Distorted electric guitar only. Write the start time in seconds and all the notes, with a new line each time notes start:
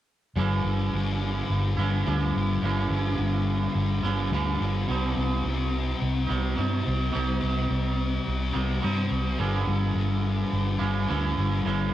0.36 G2 D3 G3
0.65 D3 G3
0.93 G2 D3 G3
1.79 D3 G3
2.06 G2 D3 G3
2.34 D3 G3
2.62 G2 D3 G3
2.91 D3 G3
3.18 G2 D3 G3
4.03 D3 G3
4.31 G2 D3 G3
4.60 D3 G3
4.87 C3 G3 C4
5.16 G3 C4
5.45 C3 G3 C4
6.29 G3 C4
6.56 C3 G3 C4
6.84 G3 C4
7.12 C3 G3 C4
7.40 G3 C4
7.69 C3 G3 C4
8.53 G3 C4
8.82 C3 G3 C4
9.11 G3 C4
9.40 G2 D3 G3
9.68 D3 G3
9.95 G2 D3 G3
10.80 D3 G3
11.08 G2 D3 G3
11.36 D3 G3
11.64 G2 D3 G3